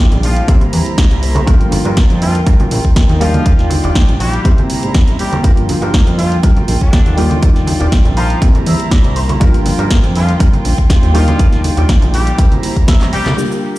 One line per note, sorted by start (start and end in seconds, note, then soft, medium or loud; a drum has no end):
0.00 0.43 G3 medium
0.00 0.44 A#3 medium
0.00 0.44 D4 medium
0.00 0.44 D#4 medium
0.00 0.44 F4 loud
0.00 0.45 F4 medium
0.00 0.47 D5 medium
0.00 0.45 G5 medium
0.11 0.42 A#1 loud
0.11 closed hi-hat soft
0.11 tambourine soft
0.11 high conga medium
0.11 low conga medium
0.23 0.54 F3 medium
0.23 0.54 F4 medium
0.23 muted clean electric guitar stroke soft
0.23 open hi-hat medium
0.23 tambourine medium
0.36 closed hi-hat soft
0.36 tambourine soft
0.48 0.65 C3 loud
0.48 1.42 G3 medium
0.48 1.43 A#3 medium
0.48 1.43 C4 medium
0.48 0.61 E4 medium
0.48 1.46 E4 medium
0.48 1.43 E4 medium
0.48 1.43 G4 medium
0.48 0.62 A#4 medium
0.48 1.46 C5 medium
0.48 0.62 C5 medium
0.48 1.46 A#5 medium
0.48 kick loud
0.48 closed hi-hat medium
0.48 tambourine medium
0.61 closed hi-hat soft
0.61 tambourine soft
0.61 high conga medium
0.72 0.82 E2 medium
0.72 muted clean electric guitar stroke soft
0.72 open hi-hat loud
0.72 tambourine medium
0.86 closed hi-hat soft
0.86 tambourine soft
0.98 kick loud
0.98 snare loud
0.98 closed hi-hat medium
0.98 tambourine medium
0.98 high conga medium
1.11 1.41 C2 loud
1.11 closed hi-hat soft
1.22 muted clean electric guitar stroke soft
1.22 open hi-hat medium
1.22 tambourine medium
1.35 muted clean electric guitar stroke medium
1.35 closed hi-hat soft
1.35 tambourine soft
1.35 high conga loud
1.47 1.78 G1 loud
1.47 3.16 F3 medium
1.47 3.16 G3 medium
1.47 3.16 A#3 medium
1.47 3.17 D4 medium
1.47 1.66 F4 loud
1.47 3.19 F4 medium
1.47 3.17 F4 loud
1.47 1.66 G4 loud
1.47 3.19 A#4 medium
1.47 1.67 A#4 loud
1.47 3.19 G5 medium
1.47 kick loud
1.47 closed hi-hat medium
1.60 closed hi-hat soft
1.60 tambourine soft
1.72 open hi-hat loud
1.72 tambourine medium
1.72 high conga loud
1.85 1.93 G2 loud
1.85 2.03 F4 medium
1.85 2.04 G4 medium
1.85 2.04 A#4 loud
1.85 closed hi-hat soft
1.85 tambourine soft
1.96 kick loud
1.96 snare loud
1.96 closed hi-hat medium
1.96 tambourine soft
2.10 2.40 F2 medium
2.10 closed hi-hat soft
2.10 tambourine soft
2.10 high conga medium
2.21 2.39 F3 medium
2.21 2.39 F4 medium
2.21 muted clean electric guitar stroke soft
2.21 open hi-hat loud
2.21 tambourine medium
2.35 closed hi-hat soft
2.35 tambourine soft
2.46 2.64 G2 medium
2.46 2.59 F4 medium
2.46 2.60 G4 medium
2.46 2.60 A#4 medium
2.46 kick loud
2.46 closed hi-hat medium
2.46 tambourine soft
2.60 closed hi-hat soft
2.60 tambourine soft
2.60 high conga loud
2.71 2.80 A#1 medium
2.71 muted clean electric guitar stroke soft
2.71 open hi-hat loud
2.71 tambourine medium
2.71 low conga medium
2.85 kick medium
2.85 closed hi-hat soft
2.85 tambourine soft
2.96 kick loud
2.96 snare loud
2.96 closed hi-hat medium
2.96 tambourine soft
2.96 high conga medium
3.09 3.40 D#2 loud
3.09 closed hi-hat soft
3.20 3.71 F3 medium
3.20 4.40 G3 medium
3.20 4.40 A#3 medium
3.20 4.40 D4 medium
3.20 4.41 D#4 medium
3.20 3.70 F4 medium
3.20 4.44 F4 medium
3.20 3.71 F4 medium
3.20 4.41 F4 loud
3.20 3.71 G4 medium
3.20 4.44 D5 medium
3.20 3.71 D5 loud
3.20 4.44 G5 medium
3.20 open hi-hat medium
3.20 tambourine medium
3.34 closed hi-hat soft
3.34 tambourine soft
3.34 high conga medium
3.46 3.77 D#2 loud
3.46 kick loud
3.46 closed hi-hat medium
3.46 tambourine soft
3.59 snare soft
3.59 closed hi-hat soft
3.59 tambourine soft
3.70 open hi-hat loud
3.70 tambourine medium
3.70 high conga loud
3.83 3.92 D#1 loud
3.83 4.02 F4 medium
3.83 4.02 G4 medium
3.83 4.03 D5 loud
3.83 closed hi-hat soft
3.83 tambourine soft
3.95 kick loud
3.95 snare loud
3.95 closed hi-hat medium
4.08 4.39 A#1 medium
4.08 closed hi-hat soft
4.08 tambourine soft
4.08 high conga medium
4.08 low conga medium
4.20 4.50 G3 medium
4.20 4.50 G4 medium
4.20 muted clean electric guitar stroke soft
4.20 open hi-hat medium
4.20 tambourine medium
4.33 closed hi-hat soft
4.33 tambourine soft
4.44 4.85 C3 loud
4.44 5.39 G3 medium
4.44 5.39 A#3 medium
4.44 5.40 C4 medium
4.44 4.58 E4 medium
4.44 5.43 E4 medium
4.44 5.40 E4 medium
4.44 5.40 G4 medium
4.44 4.58 A#4 medium
4.44 5.43 C5 medium
4.44 4.59 C5 loud
4.44 5.43 A#5 medium
4.44 kick loud
4.44 closed hi-hat medium
4.44 tambourine soft
4.58 closed hi-hat soft
4.58 tambourine soft
4.58 high conga loud
4.69 muted clean electric guitar stroke soft
4.69 open hi-hat loud
4.69 tambourine medium
4.83 4.91 G2 medium
4.83 closed hi-hat soft
4.83 tambourine soft
4.94 kick loud
4.94 snare loud
4.94 closed hi-hat medium
4.94 tambourine soft
4.94 high conga medium
5.08 closed hi-hat soft
5.08 low conga medium
5.19 5.49 G3 medium
5.19 5.49 G4 medium
5.19 muted clean electric guitar stroke soft
5.19 open hi-hat medium
5.19 tambourine medium
5.32 muted clean electric guitar stroke medium
5.32 closed hi-hat soft
5.32 tambourine soft
5.32 high conga loud
5.43 5.75 G1 loud
5.43 7.13 F3 medium
5.43 7.13 G3 medium
5.43 7.13 A#3 medium
5.43 7.16 A#3 medium
5.43 7.13 D4 medium
5.43 5.63 F4 loud
5.43 8.39 F4 medium
5.43 7.14 F4 loud
5.43 5.63 G4 loud
5.43 5.64 A#4 loud
5.43 8.39 G5 medium
5.43 kick loud
5.43 closed hi-hat medium
5.43 tambourine medium
5.57 closed hi-hat soft
5.57 tambourine soft
5.69 open hi-hat loud
5.69 tambourine medium
5.69 high conga medium
5.82 5.90 G2 loud
5.82 6.00 F4 medium
5.82 6.00 G4 medium
5.82 6.01 A#4 medium
5.82 closed hi-hat soft
5.82 tambourine soft
5.94 kick loud
5.94 snare loud
5.94 closed hi-hat medium
6.07 6.37 F2 loud
6.07 closed hi-hat soft
6.07 tambourine soft
6.07 high conga medium
6.18 6.36 F3 medium
6.18 6.36 F4 medium
6.18 muted clean electric guitar stroke soft
6.18 open hi-hat medium
6.18 tambourine medium
6.32 closed hi-hat soft
6.32 tambourine soft
6.43 6.60 G2 loud
6.43 6.56 F4 medium
6.43 6.57 G4 medium
6.43 6.57 A#4 medium
6.43 kick loud
6.43 closed hi-hat medium
6.43 tambourine soft
6.57 closed hi-hat soft
6.57 tambourine soft
6.57 high conga medium
6.68 6.77 A#1 medium
6.68 muted clean electric guitar stroke soft
6.68 open hi-hat loud
6.68 tambourine medium
6.68 low conga medium
6.81 7.18 D3 medium
6.81 7.18 D4 medium
6.81 kick medium
6.81 closed hi-hat soft
6.81 tambourine soft
6.93 kick loud
6.93 snare loud
6.93 closed hi-hat medium
6.93 tambourine medium
6.93 high conga medium
7.06 7.36 D#2 loud
7.06 closed hi-hat soft
7.17 8.37 G3 medium
7.17 8.37 A#3 medium
7.17 8.37 D4 medium
7.17 8.37 D#4 medium
7.17 7.67 F4 medium
7.17 8.38 F4 loud
7.17 7.67 G4 medium
7.17 8.41 D5 medium
7.17 7.68 D5 loud
7.17 open hi-hat medium
7.17 tambourine medium
7.30 closed hi-hat soft
7.30 tambourine soft
7.30 high conga medium
7.42 7.73 D#2 loud
7.42 kick loud
7.42 closed hi-hat medium
7.42 tambourine medium
7.56 snare soft
7.56 closed hi-hat soft
7.67 open hi-hat loud
7.67 tambourine medium
7.67 high conga medium
7.80 7.88 D#1 loud
7.80 7.98 F4 medium
7.80 7.99 G4 medium
7.80 7.99 D5 loud
7.80 closed hi-hat soft
7.80 tambourine soft
7.92 kick loud
7.92 snare loud
7.92 closed hi-hat medium
8.05 8.35 A#1 loud
8.05 closed hi-hat soft
8.05 tambourine soft
8.05 high conga medium
8.05 low conga medium
8.16 8.47 F3 medium
8.16 8.47 F4 medium
8.16 8.40 A#5 medium
8.16 muted clean electric guitar stroke soft
8.16 open hi-hat medium
8.16 tambourine medium
8.30 closed hi-hat soft
8.30 tambourine soft
8.41 8.59 C3 medium
8.41 9.36 G3 medium
8.41 9.36 A#3 medium
8.41 9.36 C4 medium
8.41 8.55 E4 medium
8.41 9.40 E4 medium
8.41 9.37 E4 medium
8.41 9.37 G4 medium
8.41 8.55 A#4 medium
8.41 9.40 C5 medium
8.41 8.55 C5 medium
8.41 8.65 G5 medium
8.41 9.40 A#5 medium
8.41 kick loud
8.41 closed hi-hat medium
8.41 tambourine medium
8.55 closed hi-hat soft
8.55 tambourine soft
8.55 high conga medium
8.66 8.75 E2 medium
8.66 8.90 E5 medium
8.66 muted clean electric guitar stroke soft
8.66 open hi-hat loud
8.66 tambourine medium
8.80 closed hi-hat soft
8.80 tambourine soft
8.91 9.14 D5 medium
8.91 kick loud
8.91 snare loud
8.91 closed hi-hat medium
8.91 tambourine medium
8.91 high conga medium
9.04 9.35 C2 loud
9.04 closed hi-hat soft
9.15 9.18 C5 medium
9.15 muted clean electric guitar stroke soft
9.15 open hi-hat medium
9.15 tambourine medium
9.28 muted clean electric guitar stroke medium
9.28 closed hi-hat soft
9.28 tambourine soft
9.28 high conga medium
9.40 9.72 G1 loud
9.40 11.10 F3 loud
9.40 11.10 G3 medium
9.40 11.13 A#3 medium
9.40 11.10 A#3 medium
9.40 11.10 D4 medium
9.40 9.60 F4 loud
9.40 12.35 F4 medium
9.40 11.10 F4 loud
9.40 9.60 G4 loud
9.40 9.60 A#4 loud
9.40 12.36 G5 medium
9.40 kick loud
9.40 closed hi-hat medium
9.40 tambourine medium
9.54 closed hi-hat soft
9.54 tambourine soft
9.66 open hi-hat loud
9.66 tambourine medium
9.66 high conga medium
9.78 9.86 G2 loud
9.78 9.97 F4 medium
9.78 9.97 G4 medium
9.78 9.98 A#4 loud
9.78 closed hi-hat soft
9.78 tambourine soft
9.91 kick loud
9.91 snare loud
9.91 closed hi-hat loud
10.03 10.34 F2 medium
10.03 closed hi-hat soft
10.03 tambourine soft
10.03 high conga medium
10.14 10.33 F3 medium
10.14 10.33 F4 loud
10.14 muted clean electric guitar stroke soft
10.14 open hi-hat medium
10.14 tambourine medium
10.28 closed hi-hat soft
10.28 tambourine soft
10.39 10.57 G2 loud
10.39 10.53 F4 medium
10.39 10.53 G4 medium
10.39 10.54 A#4 loud
10.39 kick loud
10.39 closed hi-hat medium
10.39 tambourine medium
10.53 closed hi-hat soft
10.53 tambourine soft
10.53 high conga medium
10.64 10.74 A#1 medium
10.64 muted clean electric guitar stroke soft
10.64 open hi-hat loud
10.64 tambourine medium
10.64 low conga medium
10.78 kick medium
10.78 closed hi-hat soft
10.78 tambourine soft
10.89 kick loud
10.89 snare loud
10.89 closed hi-hat loud
10.89 tambourine soft
10.89 high conga medium
11.03 11.33 D#2 loud
11.03 closed hi-hat soft
11.14 11.64 F3 medium
11.14 12.33 G3 medium
11.14 12.34 A#3 medium
11.14 12.34 D4 medium
11.14 12.34 D#4 medium
11.14 11.64 F4 medium
11.14 11.64 F4 loud
11.14 12.34 F4 loud
11.14 11.64 G4 medium
11.14 12.37 D5 medium
11.14 11.65 D5 loud
11.14 open hi-hat medium
11.14 tambourine medium
11.28 closed hi-hat soft
11.28 tambourine soft
11.28 high conga medium
11.39 11.70 D#2 loud
11.39 kick loud
11.39 closed hi-hat loud
11.39 tambourine medium
11.53 snare soft
11.53 closed hi-hat soft
11.53 tambourine soft
11.64 open hi-hat loud
11.64 tambourine medium
11.64 high conga medium
11.77 11.85 D#1 loud
11.77 11.95 F4 medium
11.77 11.96 G4 medium
11.77 11.96 D5 medium
11.77 closed hi-hat soft
11.77 tambourine soft
11.89 kick loud
11.89 snare loud
11.89 closed hi-hat loud
12.02 12.32 A#1 medium
12.02 closed hi-hat soft
12.02 tambourine soft
12.02 high conga medium
12.02 low conga medium
12.13 12.44 G3 medium
12.13 12.44 G4 medium
12.13 muted clean electric guitar stroke soft
12.13 open hi-hat medium
12.13 tambourine loud
12.27 closed hi-hat soft
12.27 tambourine soft
12.38 13.33 G3 medium
12.38 13.33 A#3 medium
12.38 13.33 C4 medium
12.38 12.51 E4 medium
12.38 13.37 E4 medium
12.38 13.33 E4 medium
12.38 13.33 G4 medium
12.38 12.52 A#4 medium
12.38 13.37 C5 medium
12.38 12.52 C5 medium
12.38 13.37 A#5 medium
12.38 kick loud
12.38 closed hi-hat medium
12.38 tambourine medium
12.52 closed hi-hat soft
12.52 tambourine soft
12.52 high conga medium
12.63 muted clean electric guitar stroke soft
12.63 open hi-hat loud
12.63 tambourine medium
12.76 kick medium
12.76 closed hi-hat soft
12.76 tambourine soft
12.88 13.11 E5 medium
12.88 kick loud
12.88 snare loud
12.88 closed hi-hat loud
12.88 tambourine medium
12.88 high conga medium
13.01 clap medium
13.01 closed hi-hat soft
13.01 tambourine soft
13.01 low conga medium
13.12 13.23 C2 soft
13.12 13.38 G3 medium
13.12 13.38 G4 medium
13.12 13.36 G5 medium
13.12 muted clean electric guitar stroke soft
13.12 open hi-hat medium
13.12 tambourine medium
13.25 13.34 C2 medium
13.25 muted clean electric guitar stroke medium
13.25 clap loud
13.25 closed hi-hat soft
13.25 tambourine soft
13.25 high conga medium
13.37 13.79 G3 medium
13.37 13.79 A#3 medium
13.37 13.79 D4 medium
13.37 13.79 F4 medium
13.37 13.79 G4 medium
13.37 13.79 A#4 medium
13.37 13.79 G5 medium
13.37 muted clean electric guitar stroke medium
13.37 shaker soft
13.50 13.79 F4 medium
13.50 13.79 G4 medium
13.50 13.79 A#4 medium
13.50 shaker soft